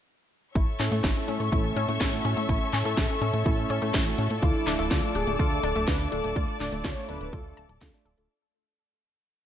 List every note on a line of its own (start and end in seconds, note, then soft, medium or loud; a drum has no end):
0.55 0.66 A1 loud
0.55 0.66 E4 medium
0.55 8.26 A4 medium
0.55 4.39 C#5 medium
0.55 4.39 E5 medium
0.55 4.39 C#6 medium
0.55 kick loud
0.55 closed hi-hat medium
0.80 0.90 A2 medium
0.80 1.13 A3 medium
0.80 0.84 C#4 loud
0.80 1.13 C#4 medium
0.80 1.13 E4 medium
0.80 1.13 A4 medium
0.80 clap medium
0.80 closed hi-hat medium
0.92 1.02 A2 medium
0.92 0.99 A3 loud
0.92 closed hi-hat medium
1.04 1.14 A1 loud
1.04 1.14 E4 medium
1.04 kick loud
1.04 snare loud
1.04 clap medium
1.04 closed hi-hat medium
1.16 1.49 A3 medium
1.16 1.49 C#4 medium
1.16 1.49 E4 medium
1.16 1.49 A4 loud
1.28 1.38 A2 medium
1.28 1.35 C#4 medium
1.28 closed hi-hat medium
1.40 1.50 A2 medium
1.40 1.44 A3 medium
1.40 closed hi-hat medium
1.52 1.73 A1 loud
1.52 1.86 A3 medium
1.52 1.86 C#4 medium
1.52 1.86 E4 medium
1.52 1.62 E4 medium
1.52 1.86 A4 loud
1.52 kick loud
1.52 closed hi-hat medium
1.76 1.87 A2 medium
1.76 1.80 C#4 loud
1.76 closed hi-hat medium
1.88 1.99 A2 loud
1.88 2.10 A3 medium
1.88 1.95 A3 loud
1.88 2.10 C#4 medium
1.88 2.10 E4 medium
1.88 2.10 A4 medium
1.88 closed hi-hat medium
2.01 2.21 A1 loud
2.01 2.11 E4 medium
2.01 kick loud
2.01 snare loud
2.01 clap medium
2.01 closed hi-hat medium
2.13 2.34 A3 medium
2.13 2.34 C#4 medium
2.13 2.34 E4 medium
2.13 2.34 F#4 loud
2.13 closed hi-hat soft
2.25 2.35 A2 medium
2.25 2.32 C#4 medium
2.25 closed hi-hat medium
2.37 2.47 A2 medium
2.37 2.70 A3 medium
2.37 2.41 A3 medium
2.37 2.70 C#4 medium
2.37 2.70 E4 medium
2.37 2.70 A4 medium
2.37 closed hi-hat medium
2.49 2.59 A1 loud
2.49 2.59 E4 medium
2.49 kick loud
2.49 closed hi-hat medium
2.73 2.83 A2 medium
2.73 3.07 A3 medium
2.73 3.07 C#4 medium
2.73 2.77 C#4 loud
2.73 3.07 E4 medium
2.73 3.07 A4 medium
2.73 clap medium
2.73 closed hi-hat medium
2.85 2.95 A2 medium
2.85 2.92 A3 loud
2.85 closed hi-hat medium
2.97 3.08 A1 loud
2.97 3.08 E4 medium
2.97 kick loud
2.97 snare loud
2.97 clap medium
2.97 closed hi-hat medium
3.09 3.43 A3 medium
3.09 3.43 C#4 medium
3.09 3.43 E4 medium
3.09 3.43 A4 loud
3.21 3.32 A2 medium
3.21 3.28 C#4 medium
3.21 closed hi-hat medium
3.33 3.44 A2 medium
3.33 3.38 A3 medium
3.33 closed hi-hat medium
3.46 3.66 A1 loud
3.46 3.79 A3 medium
3.46 3.79 C#4 medium
3.46 3.56 E4 medium
3.46 3.79 E4 medium
3.46 3.79 A4 loud
3.46 kick loud
3.46 closed hi-hat medium
3.70 3.80 A2 medium
3.70 3.74 C#4 loud
3.70 closed hi-hat medium
3.82 3.92 A2 loud
3.82 3.89 A3 loud
3.82 4.03 A3 medium
3.82 4.03 C#4 medium
3.82 4.03 E4 medium
3.82 4.03 A4 medium
3.82 closed hi-hat medium
3.94 4.15 A1 loud
3.94 4.04 E4 medium
3.94 kick loud
3.94 snare loud
3.94 clap loud
3.94 closed hi-hat medium
4.06 4.28 A3 medium
4.06 4.28 C#4 medium
4.06 4.28 E4 medium
4.06 4.28 F#4 loud
4.06 closed hi-hat soft
4.18 4.29 A2 medium
4.18 4.25 C#4 medium
4.18 closed hi-hat medium
4.30 4.41 A2 medium
4.30 4.64 A3 medium
4.30 4.35 A3 medium
4.30 4.64 D4 medium
4.30 4.64 F4 medium
4.30 4.64 A4 medium
4.30 closed hi-hat medium
4.43 4.53 D2 loud
4.43 4.93 E4 medium
4.43 4.53 F4 medium
4.43 8.26 D5 medium
4.43 8.26 A5 medium
4.43 8.26 D6 medium
4.43 kick loud
4.43 closed hi-hat medium
4.67 4.77 D1 medium
4.67 5.00 A3 medium
4.67 4.71 D4 loud
4.67 5.00 D4 medium
4.67 5.00 F4 medium
4.67 5.00 A4 medium
4.67 clap medium
4.67 closed hi-hat medium
4.79 4.89 D1 medium
4.79 4.86 A3 loud
4.79 closed hi-hat soft
4.91 5.01 D2 loud
4.91 5.01 F4 medium
4.91 5.17 F4 medium
4.91 kick loud
4.91 snare loud
4.91 clap medium
4.91 closed hi-hat medium
5.03 5.36 A3 medium
5.03 5.36 D4 medium
5.03 5.36 F4 medium
5.03 5.36 A4 medium
5.15 5.25 D1 medium
5.15 5.22 D4 medium
5.15 5.39 G#4 medium
5.15 closed hi-hat medium
5.27 5.37 D1 medium
5.27 5.31 A3 medium
5.27 closed hi-hat soft
5.39 5.60 D2 loud
5.39 5.73 A3 medium
5.39 5.73 D4 medium
5.39 5.73 F4 medium
5.39 5.50 F4 medium
5.39 5.73 A4 loud
5.39 5.84 A4 loud
5.39 kick loud
5.39 closed hi-hat medium
5.63 5.74 D1 medium
5.63 5.68 D4 loud
5.63 closed hi-hat medium
5.75 5.86 D1 loud
5.75 5.97 A3 medium
5.75 5.82 A3 loud
5.75 5.97 D4 medium
5.75 5.97 F4 medium
5.75 5.97 A4 medium
5.75 closed hi-hat soft
5.88 6.08 D2 loud
5.88 5.98 F4 medium
5.88 5.99 B4 loud
5.88 kick loud
5.88 snare loud
5.88 clap medium
5.88 closed hi-hat medium
6.00 6.21 A3 medium
6.00 6.21 D4 medium
6.00 6.21 F4 medium
6.00 6.21 A4 loud
6.00 closed hi-hat soft
6.12 6.22 D1 medium
6.12 6.19 D4 medium
6.12 6.38 A4 loud
6.12 closed hi-hat medium
6.24 6.34 D1 medium
6.24 6.57 A3 medium
6.24 6.28 A3 medium
6.24 6.57 D4 medium
6.24 6.57 F4 medium
6.24 6.57 A4 medium
6.24 closed hi-hat medium
6.36 6.46 D2 loud
6.36 6.46 F4 medium
6.36 6.86 D5 loud
6.36 kick loud
6.36 closed hi-hat medium
6.48 closed hi-hat soft
6.60 6.70 D1 medium
6.60 6.94 A3 medium
6.60 6.94 D4 medium
6.60 6.64 D4 loud
6.60 6.94 F4 medium
6.60 6.94 A4 medium
6.60 clap medium
6.60 closed hi-hat medium
6.72 6.83 D1 medium
6.72 6.79 A3 loud
6.72 closed hi-hat soft
6.84 6.95 D2 loud
6.84 6.95 F4 medium
6.84 7.10 C#5 loud
6.84 kick loud
6.84 snare loud
6.84 clap medium
6.84 closed hi-hat medium
6.97 7.30 A3 medium
6.97 7.30 D4 medium
6.97 7.30 F4 medium
6.97 7.30 A4 medium
6.97 closed hi-hat soft
7.09 7.19 D1 medium
7.09 7.15 D4 medium
7.09 7.34 B4 loud
7.09 closed hi-hat medium
7.21 7.31 D1 medium
7.21 7.25 A3 medium
7.21 closed hi-hat medium
7.33 7.53 D2 loud
7.33 7.66 A3 medium
7.33 7.66 D4 medium
7.33 7.66 F4 medium
7.33 7.43 F4 medium
7.33 8.05 A4 loud
7.33 7.66 A4 loud
7.33 kick loud
7.33 closed hi-hat medium
7.57 7.67 D1 loud
7.57 7.64 A5 loud
7.57 closed hi-hat medium
7.69 7.79 D1 loud
7.69 7.76 A4 medium
7.69 closed hi-hat soft
7.81 7.91 D2 medium
7.81 7.90 A3 medium
7.81 7.90 D4 medium
7.81 7.90 F4 medium
7.81 7.88 F4 medium
7.81 7.90 A4 loud
7.81 kick loud
7.81 snare loud
7.81 clap medium
7.81 closed hi-hat medium
7.93 8.15 A3 medium
7.93 8.15 D4 medium
7.93 8.15 F4 medium
7.93 8.15 D5 loud
7.93 snare soft
7.93 closed hi-hat soft
8.05 8.16 D1 loud
8.05 8.09 A4 loud
8.05 closed hi-hat medium
8.17 8.28 D1 medium
8.17 8.28 A3 loud
8.17 8.28 D4 medium
8.17 8.28 F4 medium
8.17 8.24 A4 medium
8.17 8.28 A4 loud
8.17 closed hi-hat soft